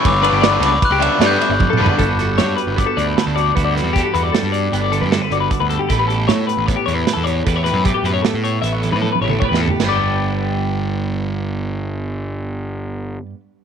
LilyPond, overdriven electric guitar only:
\new Staff \with { instrumentName = "Overdriven electric guitar" } { \time 5/4 \key g \lydian \tempo 4 = 154 r8 <d g b d'>8 <d g b d'>8 r4 <d g b d'>8 <d g b d'>8 r4 <d g b d'>8 | r1 r4 | r1 r4 | r1 r4 |
r1 r4 | r1 r4 | r1 r4 | }